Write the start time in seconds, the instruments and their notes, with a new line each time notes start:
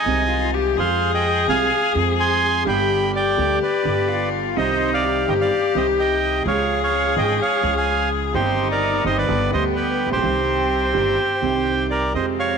Already playing: cello D#4, bandoneon D#5 G#5
0.05 upright bass C2, upright piano C2 C3 D#3 G#3 C4 G#4, string section C4 D#4 G#4
0.30 cello F4
0.54 cello G4
0.75 upright piano F2 F3 G#3 C4, upright bass F2, string section C4 F4 G#4, cello G#4, bandoneon C5
0.79 upright piano G#4, bandoneon F5
1.14 bandoneon D#5 G5
1.48 upright bass C2, upright piano C2 C3 F3 G#3 C4 G#4, string section C4 F4 G#4, bandoneon F5 G#5
1.94 upright bass F2, upright piano F2 F3 G#3 C4 G#4, string section C4 F4 G#4
2.20 bandoneon G#5 C6
2.64 upright piano G1 G2 D3 G3 B3 G4, upright bass G1, string section B3 D4 G4, cello G4
2.68 bandoneon G5 B5
3.13 cello G4, bandoneon D5 G5
3.37 upright piano D2 D3 G3 B3 G4, upright bass D2, string section B3 D4 G4
3.63 bandoneon B4 D5
3.83 upright bass G1, upright piano G1 G2 D3 G3 B3, string section B3 D4 G4
3.87 upright piano G4
4.08 cello F4
4.54 upright bass C2, upright piano C2 C3 D#3 G3 C4, string section C4 D#4 G4, cello D#4, bandoneon D#5
4.59 upright piano G4, bandoneon C5
4.94 bandoneon D5 F5
5.04 cello G4
5.28 upright bass G1, upright piano G1 G2 D#3 G3 C4 G4, string section C4 D#4 G4, bandoneon D#5 G5
5.41 bandoneon D5 F5
5.74 upright bass C2, upright piano C2 C3 D#3 G3 C4, string section C4 D#4 G4, bandoneon C5 D#5
5.78 upright piano G4
6.00 bandoneon D#5 G5
6.44 upright bass C#2, upright piano C#2 C#3 F3 G#3 C#4 G#4, string section C#4 F4 G#4, cello G#4, bandoneon C#5 F5
6.83 bandoneon C#5 F5
7.16 upright bass G#1, upright piano G#1 G#2 F3 G#3 C#4 G#4, string section C#4 F4 G#4, bandoneon D#5 G5
7.42 bandoneon C#5 F5
7.61 upright piano C#2 C#3 F3 G#3 C#4 G#4, upright bass C#2, string section C#4 F4 G#4
7.77 bandoneon F5 G#5
8.33 upright bass G1, upright piano G1 G2 D#3 G3 C4, string section C4 D#4 G4, cello D#4, bandoneon G4 C5
8.37 upright piano G4
8.71 bandoneon A#4 D5
9.04 upright piano G1 G2 D#3 G3 C4 G4, upright bass G1, string section C4 D#4 G4, bandoneon C5 D#5
9.18 bandoneon B4 D5
9.27 upright bass G1, upright piano G1 G2 D3 G3 B3 G4, cello B3, string section B3 D4 G4
9.50 upright piano D2 D3 G3 B3, upright bass D2, string section B3 D4 G4, bandoneon C5 D#5
9.54 upright piano G4
9.76 bandoneon G4 B4
10.06 upright piano A1, upright bass A1
10.11 upright piano A#1, upright bass A#1, bandoneon G4 C5
10.16 upright piano B1 D#3, upright bass B1
10.21 upright piano C2 C3 G3 C4 G4, upright bass C2, cello C4, string section C4 D#4 G4
10.93 upright piano G1 G2 D#3 G3 C4 G4, upright bass G1, string section C4 D#4 G4
11.40 upright piano C2 C3 D#3 G3 C4, upright bass C2, string section C4 D#4 G4
11.44 upright piano G4
11.90 bandoneon A#4 D5
12.12 upright bass F2, upright piano F2 C3 F3 G#3 G4, string section G#3 F4 G4, cello C4, bandoneon C5 D#5
12.39 bandoneon C#5 F5